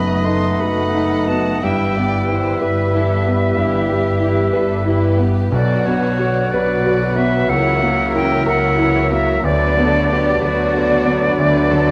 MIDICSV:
0, 0, Header, 1, 12, 480
1, 0, Start_track
1, 0, Key_signature, 1, "minor"
1, 0, Tempo, 671141
1, 1160, Time_signature, 12, 3, 24, 8
1, 2105, Tempo, 649351
1, 8735, End_track
2, 0, Start_track
2, 0, Title_t, "Flute"
2, 0, Program_c, 0, 73
2, 0, Note_on_c, 0, 83, 60
2, 181, Note_on_c, 0, 84, 52
2, 191, Note_off_c, 0, 83, 0
2, 429, Note_on_c, 0, 83, 55
2, 440, Note_off_c, 0, 84, 0
2, 914, Note_on_c, 0, 81, 49
2, 925, Note_off_c, 0, 83, 0
2, 1152, Note_off_c, 0, 81, 0
2, 1156, Note_on_c, 0, 79, 60
2, 1852, Note_on_c, 0, 76, 52
2, 1862, Note_off_c, 0, 79, 0
2, 3762, Note_off_c, 0, 76, 0
2, 4017, Note_on_c, 0, 74, 58
2, 4257, Note_on_c, 0, 73, 56
2, 4268, Note_off_c, 0, 74, 0
2, 4746, Note_on_c, 0, 74, 60
2, 4757, Note_off_c, 0, 73, 0
2, 5223, Note_on_c, 0, 76, 64
2, 5234, Note_off_c, 0, 74, 0
2, 5469, Note_on_c, 0, 78, 73
2, 5480, Note_off_c, 0, 76, 0
2, 5949, Note_off_c, 0, 78, 0
2, 5953, Note_on_c, 0, 79, 69
2, 6188, Note_off_c, 0, 79, 0
2, 6197, Note_on_c, 0, 78, 70
2, 6661, Note_off_c, 0, 78, 0
2, 6666, Note_on_c, 0, 76, 68
2, 6905, Note_off_c, 0, 76, 0
2, 6910, Note_on_c, 0, 74, 74
2, 7625, Note_off_c, 0, 74, 0
2, 7640, Note_on_c, 0, 74, 68
2, 8735, Note_off_c, 0, 74, 0
2, 8735, End_track
3, 0, Start_track
3, 0, Title_t, "Oboe"
3, 0, Program_c, 1, 68
3, 0, Note_on_c, 1, 75, 38
3, 1166, Note_on_c, 1, 76, 40
3, 1177, Note_off_c, 1, 75, 0
3, 3813, Note_off_c, 1, 76, 0
3, 4020, Note_on_c, 1, 78, 47
3, 5467, Note_on_c, 1, 76, 50
3, 5479, Note_off_c, 1, 78, 0
3, 6914, Note_on_c, 1, 74, 51
3, 6925, Note_off_c, 1, 76, 0
3, 8735, Note_off_c, 1, 74, 0
3, 8735, End_track
4, 0, Start_track
4, 0, Title_t, "Clarinet"
4, 0, Program_c, 2, 71
4, 0, Note_on_c, 2, 71, 41
4, 1133, Note_off_c, 2, 71, 0
4, 1161, Note_on_c, 2, 71, 43
4, 5245, Note_off_c, 2, 71, 0
4, 5488, Note_on_c, 2, 70, 50
4, 6889, Note_off_c, 2, 70, 0
4, 6913, Note_on_c, 2, 71, 53
4, 8735, Note_off_c, 2, 71, 0
4, 8735, End_track
5, 0, Start_track
5, 0, Title_t, "Violin section"
5, 0, Program_c, 3, 48
5, 0, Note_on_c, 3, 71, 31
5, 187, Note_off_c, 3, 71, 0
5, 195, Note_on_c, 3, 69, 32
5, 436, Note_off_c, 3, 69, 0
5, 443, Note_on_c, 3, 71, 33
5, 679, Note_on_c, 3, 69, 33
5, 682, Note_off_c, 3, 71, 0
5, 904, Note_off_c, 3, 69, 0
5, 915, Note_on_c, 3, 71, 34
5, 1152, Note_on_c, 3, 67, 38
5, 1157, Note_off_c, 3, 71, 0
5, 1374, Note_off_c, 3, 67, 0
5, 1394, Note_on_c, 3, 71, 33
5, 1623, Note_on_c, 3, 67, 35
5, 1629, Note_off_c, 3, 71, 0
5, 1863, Note_on_c, 3, 71, 36
5, 1865, Note_off_c, 3, 67, 0
5, 2097, Note_on_c, 3, 67, 35
5, 2103, Note_off_c, 3, 71, 0
5, 2324, Note_off_c, 3, 67, 0
5, 2336, Note_on_c, 3, 71, 36
5, 2575, Note_on_c, 3, 67, 37
5, 2576, Note_off_c, 3, 71, 0
5, 2810, Note_off_c, 3, 67, 0
5, 2818, Note_on_c, 3, 71, 34
5, 3050, Note_on_c, 3, 67, 35
5, 3051, Note_off_c, 3, 71, 0
5, 3273, Note_off_c, 3, 67, 0
5, 3293, Note_on_c, 3, 71, 39
5, 3532, Note_off_c, 3, 71, 0
5, 3548, Note_on_c, 3, 67, 37
5, 3779, Note_off_c, 3, 67, 0
5, 3781, Note_on_c, 3, 71, 36
5, 4019, Note_on_c, 3, 74, 41
5, 4021, Note_off_c, 3, 71, 0
5, 4247, Note_off_c, 3, 74, 0
5, 4273, Note_on_c, 3, 71, 37
5, 4514, Note_off_c, 3, 71, 0
5, 4517, Note_on_c, 3, 74, 41
5, 4758, Note_off_c, 3, 74, 0
5, 4765, Note_on_c, 3, 71, 41
5, 5000, Note_off_c, 3, 71, 0
5, 5007, Note_on_c, 3, 74, 42
5, 5225, Note_off_c, 3, 74, 0
5, 5245, Note_on_c, 3, 71, 38
5, 5479, Note_on_c, 3, 73, 45
5, 5483, Note_off_c, 3, 71, 0
5, 5705, Note_off_c, 3, 73, 0
5, 5717, Note_on_c, 3, 70, 39
5, 5948, Note_on_c, 3, 73, 41
5, 5958, Note_off_c, 3, 70, 0
5, 6190, Note_off_c, 3, 73, 0
5, 6199, Note_on_c, 3, 70, 42
5, 6431, Note_on_c, 3, 73, 42
5, 6436, Note_off_c, 3, 70, 0
5, 6655, Note_off_c, 3, 73, 0
5, 6680, Note_on_c, 3, 70, 45
5, 6915, Note_on_c, 3, 74, 46
5, 6917, Note_off_c, 3, 70, 0
5, 7140, Note_off_c, 3, 74, 0
5, 7148, Note_on_c, 3, 71, 43
5, 7393, Note_on_c, 3, 74, 45
5, 7396, Note_off_c, 3, 71, 0
5, 7638, Note_off_c, 3, 74, 0
5, 7642, Note_on_c, 3, 71, 51
5, 7879, Note_on_c, 3, 74, 45
5, 7881, Note_off_c, 3, 71, 0
5, 8101, Note_off_c, 3, 74, 0
5, 8112, Note_on_c, 3, 71, 49
5, 8350, Note_on_c, 3, 74, 51
5, 8352, Note_off_c, 3, 71, 0
5, 8587, Note_on_c, 3, 71, 46
5, 8589, Note_off_c, 3, 74, 0
5, 8735, Note_off_c, 3, 71, 0
5, 8735, End_track
6, 0, Start_track
6, 0, Title_t, "Violin section"
6, 0, Program_c, 4, 48
6, 0, Note_on_c, 4, 75, 45
6, 429, Note_on_c, 4, 78, 47
6, 432, Note_off_c, 4, 75, 0
6, 1143, Note_off_c, 4, 78, 0
6, 1166, Note_on_c, 4, 76, 44
6, 1398, Note_off_c, 4, 76, 0
6, 1399, Note_on_c, 4, 74, 45
6, 1631, Note_off_c, 4, 74, 0
6, 1645, Note_on_c, 4, 72, 43
6, 1868, Note_on_c, 4, 71, 42
6, 1871, Note_off_c, 4, 72, 0
6, 2106, Note_off_c, 4, 71, 0
6, 2111, Note_on_c, 4, 69, 41
6, 2348, Note_off_c, 4, 69, 0
6, 2357, Note_on_c, 4, 71, 42
6, 2586, Note_off_c, 4, 71, 0
6, 2594, Note_on_c, 4, 67, 47
6, 3289, Note_on_c, 4, 69, 41
6, 3296, Note_off_c, 4, 67, 0
6, 3530, Note_off_c, 4, 69, 0
6, 3544, Note_on_c, 4, 71, 43
6, 3773, Note_off_c, 4, 71, 0
6, 3783, Note_on_c, 4, 67, 41
6, 4022, Note_off_c, 4, 67, 0
6, 4026, Note_on_c, 4, 66, 50
6, 4759, Note_off_c, 4, 66, 0
6, 4772, Note_on_c, 4, 71, 52
6, 5473, Note_off_c, 4, 71, 0
6, 5482, Note_on_c, 4, 70, 58
6, 6916, Note_off_c, 4, 70, 0
6, 6927, Note_on_c, 4, 71, 52
6, 7158, Note_off_c, 4, 71, 0
6, 7166, Note_on_c, 4, 69, 54
6, 7399, Note_on_c, 4, 67, 55
6, 7405, Note_off_c, 4, 69, 0
6, 7636, Note_off_c, 4, 67, 0
6, 7649, Note_on_c, 4, 66, 58
6, 8347, Note_on_c, 4, 71, 60
6, 8358, Note_off_c, 4, 66, 0
6, 8582, Note_off_c, 4, 71, 0
6, 8591, Note_on_c, 4, 69, 53
6, 8735, Note_off_c, 4, 69, 0
6, 8735, End_track
7, 0, Start_track
7, 0, Title_t, "French horn section"
7, 0, Program_c, 5, 60
7, 0, Note_on_c, 5, 57, 40
7, 0, Note_on_c, 5, 63, 37
7, 1156, Note_on_c, 5, 64, 42
7, 1157, Note_off_c, 5, 57, 0
7, 1157, Note_off_c, 5, 63, 0
7, 1158, Note_on_c, 5, 59, 39
7, 3888, Note_off_c, 5, 64, 0
7, 4014, Note_on_c, 5, 66, 45
7, 5449, Note_off_c, 5, 66, 0
7, 5469, Note_on_c, 5, 64, 51
7, 5470, Note_on_c, 5, 58, 47
7, 5478, Note_off_c, 5, 59, 0
7, 6881, Note_off_c, 5, 58, 0
7, 6907, Note_on_c, 5, 62, 54
7, 6909, Note_off_c, 5, 64, 0
7, 6909, Note_on_c, 5, 59, 50
7, 8735, Note_off_c, 5, 59, 0
7, 8735, Note_off_c, 5, 62, 0
7, 8735, End_track
8, 0, Start_track
8, 0, Title_t, "Grand piano"
8, 0, Program_c, 6, 0
8, 0, Control_c, 6, 64, 127
8, 0, Note_on_c, 6, 42, 44
8, 0, Note_on_c, 6, 59, 32
8, 188, Note_on_c, 6, 63, 35
8, 336, Note_off_c, 6, 59, 0
8, 431, Note_on_c, 6, 71, 38
8, 579, Note_off_c, 6, 63, 0
8, 677, Note_on_c, 6, 63, 36
8, 822, Note_off_c, 6, 71, 0
8, 921, Note_on_c, 6, 59, 33
8, 1065, Note_off_c, 6, 63, 0
8, 1136, Note_off_c, 6, 42, 0
8, 1160, Note_off_c, 6, 59, 0
8, 1167, Note_on_c, 6, 43, 45
8, 1174, Control_c, 6, 64, 0
8, 1299, Control_c, 6, 64, 127
8, 1412, Note_on_c, 6, 59, 35
8, 1638, Note_on_c, 6, 64, 35
8, 1781, Note_off_c, 6, 59, 0
8, 1870, Note_on_c, 6, 71, 38
8, 2015, Note_off_c, 6, 64, 0
8, 2108, Note_on_c, 6, 64, 39
8, 2251, Note_off_c, 6, 71, 0
8, 2341, Note_on_c, 6, 59, 36
8, 2489, Note_off_c, 6, 64, 0
8, 2552, Note_off_c, 6, 43, 0
8, 2564, Note_on_c, 6, 43, 42
8, 2718, Note_off_c, 6, 59, 0
8, 2802, Note_on_c, 6, 55, 37
8, 3035, Note_on_c, 6, 64, 37
8, 3187, Note_off_c, 6, 55, 0
8, 3279, Note_on_c, 6, 71, 41
8, 3427, Note_off_c, 6, 64, 0
8, 3515, Note_on_c, 6, 64, 39
8, 3669, Note_off_c, 6, 71, 0
8, 3756, Note_on_c, 6, 59, 37
8, 3910, Note_off_c, 6, 64, 0
8, 3977, Note_off_c, 6, 43, 0
8, 4008, Note_off_c, 6, 59, 0
8, 4008, Note_on_c, 6, 35, 53
8, 4029, Control_c, 6, 64, 0
8, 4136, Control_c, 6, 64, 127
8, 4254, Note_on_c, 6, 59, 40
8, 4497, Note_on_c, 6, 66, 37
8, 4652, Note_off_c, 6, 59, 0
8, 4761, Note_on_c, 6, 71, 40
8, 4893, Note_off_c, 6, 66, 0
8, 4992, Note_on_c, 6, 66, 44
8, 5142, Note_off_c, 6, 71, 0
8, 5227, Note_on_c, 6, 59, 41
8, 5380, Note_off_c, 6, 66, 0
8, 5446, Note_off_c, 6, 35, 0
8, 5463, Note_on_c, 6, 37, 55
8, 5475, Note_off_c, 6, 59, 0
8, 5494, Control_c, 6, 64, 0
8, 5629, Control_c, 6, 64, 127
8, 5713, Note_on_c, 6, 58, 43
8, 5953, Note_on_c, 6, 64, 44
8, 6097, Note_off_c, 6, 58, 0
8, 6185, Note_on_c, 6, 70, 44
8, 6336, Note_off_c, 6, 64, 0
8, 6424, Note_on_c, 6, 64, 47
8, 6572, Note_off_c, 6, 70, 0
8, 6662, Note_on_c, 6, 58, 43
8, 6812, Note_off_c, 6, 64, 0
8, 6877, Note_off_c, 6, 37, 0
8, 6903, Note_on_c, 6, 38, 57
8, 6908, Note_off_c, 6, 58, 0
8, 6926, Control_c, 6, 64, 0
8, 7049, Control_c, 6, 64, 127
8, 7153, Note_on_c, 6, 59, 47
8, 7395, Note_on_c, 6, 62, 45
8, 7543, Note_off_c, 6, 59, 0
8, 7630, Note_on_c, 6, 71, 49
8, 7783, Note_off_c, 6, 62, 0
8, 7891, Note_on_c, 6, 62, 50
8, 8017, Note_off_c, 6, 71, 0
8, 8102, Note_on_c, 6, 59, 48
8, 8265, Note_off_c, 6, 62, 0
8, 8320, Note_off_c, 6, 38, 0
8, 8343, Note_on_c, 6, 38, 58
8, 8488, Note_off_c, 6, 59, 0
8, 8587, Note_on_c, 6, 50, 47
8, 8735, Note_off_c, 6, 38, 0
8, 8735, Note_off_c, 6, 50, 0
8, 8735, End_track
9, 0, Start_track
9, 0, Title_t, "Viola section"
9, 0, Program_c, 7, 48
9, 0, Note_on_c, 7, 57, 35
9, 0, Note_on_c, 7, 66, 33
9, 172, Note_on_c, 7, 63, 31
9, 175, Note_on_c, 7, 59, 33
9, 182, Note_off_c, 7, 57, 0
9, 182, Note_off_c, 7, 66, 0
9, 425, Note_off_c, 7, 63, 0
9, 426, Note_off_c, 7, 59, 0
9, 427, Note_on_c, 7, 57, 33
9, 432, Note_on_c, 7, 66, 33
9, 658, Note_on_c, 7, 59, 32
9, 661, Note_on_c, 7, 63, 35
9, 674, Note_off_c, 7, 57, 0
9, 677, Note_off_c, 7, 66, 0
9, 893, Note_off_c, 7, 59, 0
9, 895, Note_off_c, 7, 63, 0
9, 899, Note_on_c, 7, 57, 33
9, 906, Note_on_c, 7, 66, 32
9, 1149, Note_off_c, 7, 57, 0
9, 1153, Note_off_c, 7, 66, 0
9, 1155, Note_on_c, 7, 64, 37
9, 1159, Note_on_c, 7, 52, 35
9, 1376, Note_off_c, 7, 64, 0
9, 1378, Note_off_c, 7, 52, 0
9, 1382, Note_on_c, 7, 55, 31
9, 1386, Note_on_c, 7, 67, 34
9, 1611, Note_on_c, 7, 64, 33
9, 1614, Note_on_c, 7, 52, 36
9, 1623, Note_off_c, 7, 55, 0
9, 1625, Note_off_c, 7, 67, 0
9, 1850, Note_on_c, 7, 55, 36
9, 1850, Note_on_c, 7, 67, 34
9, 1859, Note_off_c, 7, 64, 0
9, 1860, Note_off_c, 7, 52, 0
9, 2086, Note_on_c, 7, 52, 37
9, 2092, Note_on_c, 7, 64, 37
9, 2096, Note_off_c, 7, 67, 0
9, 2097, Note_off_c, 7, 55, 0
9, 2318, Note_off_c, 7, 52, 0
9, 2322, Note_off_c, 7, 64, 0
9, 2347, Note_on_c, 7, 55, 34
9, 2349, Note_on_c, 7, 67, 34
9, 2582, Note_off_c, 7, 55, 0
9, 2583, Note_off_c, 7, 67, 0
9, 2584, Note_on_c, 7, 64, 39
9, 2588, Note_on_c, 7, 52, 39
9, 2815, Note_off_c, 7, 64, 0
9, 2816, Note_off_c, 7, 52, 0
9, 2823, Note_on_c, 7, 67, 37
9, 2825, Note_on_c, 7, 55, 35
9, 3053, Note_off_c, 7, 67, 0
9, 3054, Note_off_c, 7, 55, 0
9, 3063, Note_on_c, 7, 52, 35
9, 3064, Note_on_c, 7, 64, 34
9, 3280, Note_off_c, 7, 52, 0
9, 3281, Note_off_c, 7, 64, 0
9, 3294, Note_on_c, 7, 55, 37
9, 3296, Note_on_c, 7, 67, 37
9, 3533, Note_off_c, 7, 55, 0
9, 3534, Note_off_c, 7, 67, 0
9, 3542, Note_on_c, 7, 64, 38
9, 3543, Note_on_c, 7, 52, 35
9, 3777, Note_off_c, 7, 52, 0
9, 3777, Note_off_c, 7, 64, 0
9, 3785, Note_on_c, 7, 55, 36
9, 3785, Note_on_c, 7, 67, 35
9, 4022, Note_off_c, 7, 55, 0
9, 4023, Note_off_c, 7, 67, 0
9, 4027, Note_on_c, 7, 50, 42
9, 4033, Note_on_c, 7, 66, 44
9, 4252, Note_off_c, 7, 50, 0
9, 4255, Note_off_c, 7, 66, 0
9, 4270, Note_on_c, 7, 54, 37
9, 4270, Note_on_c, 7, 62, 37
9, 4511, Note_on_c, 7, 50, 40
9, 4511, Note_on_c, 7, 66, 39
9, 4513, Note_off_c, 7, 54, 0
9, 4513, Note_off_c, 7, 62, 0
9, 4755, Note_off_c, 7, 50, 0
9, 4755, Note_off_c, 7, 66, 0
9, 4759, Note_on_c, 7, 54, 40
9, 4761, Note_on_c, 7, 62, 38
9, 4994, Note_on_c, 7, 66, 39
9, 4998, Note_off_c, 7, 54, 0
9, 4998, Note_off_c, 7, 62, 0
9, 4998, Note_on_c, 7, 50, 41
9, 5218, Note_off_c, 7, 66, 0
9, 5220, Note_off_c, 7, 50, 0
9, 5222, Note_on_c, 7, 62, 39
9, 5223, Note_on_c, 7, 54, 37
9, 5472, Note_off_c, 7, 62, 0
9, 5473, Note_off_c, 7, 54, 0
9, 5477, Note_on_c, 7, 52, 42
9, 5478, Note_on_c, 7, 64, 42
9, 5704, Note_off_c, 7, 52, 0
9, 5704, Note_off_c, 7, 64, 0
9, 5712, Note_on_c, 7, 66, 42
9, 5713, Note_on_c, 7, 54, 42
9, 5955, Note_off_c, 7, 54, 0
9, 5955, Note_off_c, 7, 66, 0
9, 5955, Note_on_c, 7, 64, 38
9, 5959, Note_on_c, 7, 52, 39
9, 6193, Note_on_c, 7, 54, 44
9, 6194, Note_off_c, 7, 64, 0
9, 6196, Note_off_c, 7, 52, 0
9, 6196, Note_on_c, 7, 66, 42
9, 6425, Note_on_c, 7, 52, 41
9, 6427, Note_on_c, 7, 64, 41
9, 6433, Note_off_c, 7, 54, 0
9, 6434, Note_off_c, 7, 66, 0
9, 6651, Note_off_c, 7, 52, 0
9, 6653, Note_off_c, 7, 64, 0
9, 6660, Note_on_c, 7, 66, 43
9, 6663, Note_on_c, 7, 54, 42
9, 6907, Note_off_c, 7, 66, 0
9, 6907, Note_on_c, 7, 59, 50
9, 6909, Note_off_c, 7, 54, 0
9, 6909, Note_on_c, 7, 62, 48
9, 7136, Note_off_c, 7, 59, 0
9, 7137, Note_off_c, 7, 62, 0
9, 7161, Note_on_c, 7, 54, 44
9, 7161, Note_on_c, 7, 59, 44
9, 7394, Note_off_c, 7, 59, 0
9, 7402, Note_off_c, 7, 54, 0
9, 7403, Note_on_c, 7, 59, 47
9, 7403, Note_on_c, 7, 62, 44
9, 7636, Note_off_c, 7, 59, 0
9, 7643, Note_off_c, 7, 62, 0
9, 7644, Note_on_c, 7, 54, 48
9, 7645, Note_on_c, 7, 59, 47
9, 7865, Note_off_c, 7, 59, 0
9, 7874, Note_on_c, 7, 59, 46
9, 7876, Note_on_c, 7, 62, 46
9, 7882, Note_off_c, 7, 54, 0
9, 8098, Note_off_c, 7, 59, 0
9, 8099, Note_off_c, 7, 62, 0
9, 8118, Note_on_c, 7, 54, 44
9, 8120, Note_on_c, 7, 59, 44
9, 8336, Note_off_c, 7, 59, 0
9, 8345, Note_on_c, 7, 59, 50
9, 8348, Note_on_c, 7, 62, 50
9, 8354, Note_off_c, 7, 54, 0
9, 8586, Note_off_c, 7, 59, 0
9, 8587, Note_off_c, 7, 62, 0
9, 8594, Note_on_c, 7, 54, 49
9, 8594, Note_on_c, 7, 59, 50
9, 8735, Note_off_c, 7, 54, 0
9, 8735, Note_off_c, 7, 59, 0
9, 8735, End_track
10, 0, Start_track
10, 0, Title_t, "Bassoon"
10, 0, Program_c, 8, 70
10, 0, Note_on_c, 8, 57, 36
10, 1160, Note_off_c, 8, 57, 0
10, 1167, Note_on_c, 8, 55, 42
10, 3783, Note_off_c, 8, 55, 0
10, 4033, Note_on_c, 8, 54, 44
10, 6893, Note_off_c, 8, 54, 0
10, 6921, Note_on_c, 8, 54, 52
10, 8735, Note_off_c, 8, 54, 0
10, 8735, End_track
11, 0, Start_track
11, 0, Title_t, "Cello section"
11, 0, Program_c, 10, 48
11, 0, Note_on_c, 10, 42, 42
11, 345, Note_off_c, 10, 42, 0
11, 434, Note_on_c, 10, 42, 42
11, 1076, Note_off_c, 10, 42, 0
11, 1157, Note_on_c, 10, 43, 46
11, 1782, Note_off_c, 10, 43, 0
11, 1868, Note_on_c, 10, 43, 43
11, 2498, Note_off_c, 10, 43, 0
11, 2583, Note_on_c, 10, 43, 46
11, 3205, Note_off_c, 10, 43, 0
11, 3291, Note_on_c, 10, 43, 51
11, 3929, Note_off_c, 10, 43, 0
11, 4017, Note_on_c, 10, 47, 54
11, 4668, Note_off_c, 10, 47, 0
11, 4756, Note_on_c, 10, 47, 53
11, 5393, Note_off_c, 10, 47, 0
11, 5479, Note_on_c, 10, 49, 54
11, 6113, Note_off_c, 10, 49, 0
11, 6199, Note_on_c, 10, 49, 53
11, 6830, Note_off_c, 10, 49, 0
11, 6913, Note_on_c, 10, 50, 60
11, 7556, Note_off_c, 10, 50, 0
11, 7642, Note_on_c, 10, 50, 58
11, 8271, Note_off_c, 10, 50, 0
11, 8347, Note_on_c, 10, 50, 60
11, 8735, Note_off_c, 10, 50, 0
11, 8735, End_track
12, 0, Start_track
12, 0, Title_t, "Double bass section"
12, 0, Program_c, 11, 48
12, 0, Note_on_c, 11, 30, 42
12, 346, Note_off_c, 11, 30, 0
12, 426, Note_on_c, 11, 30, 43
12, 1072, Note_off_c, 11, 30, 0
12, 1163, Note_on_c, 11, 31, 46
12, 1784, Note_off_c, 11, 31, 0
12, 1866, Note_on_c, 11, 31, 45
12, 2497, Note_off_c, 11, 31, 0
12, 2581, Note_on_c, 11, 31, 47
12, 3204, Note_off_c, 11, 31, 0
12, 3299, Note_on_c, 11, 31, 46
12, 3933, Note_off_c, 11, 31, 0
12, 4020, Note_on_c, 11, 35, 51
12, 4669, Note_off_c, 11, 35, 0
12, 4760, Note_on_c, 11, 35, 49
12, 5396, Note_off_c, 11, 35, 0
12, 5479, Note_on_c, 11, 37, 49
12, 6113, Note_off_c, 11, 37, 0
12, 6199, Note_on_c, 11, 37, 55
12, 6830, Note_off_c, 11, 37, 0
12, 6910, Note_on_c, 11, 38, 57
12, 7554, Note_off_c, 11, 38, 0
12, 7635, Note_on_c, 11, 38, 56
12, 8267, Note_off_c, 11, 38, 0
12, 8343, Note_on_c, 11, 38, 60
12, 8735, Note_off_c, 11, 38, 0
12, 8735, End_track
0, 0, End_of_file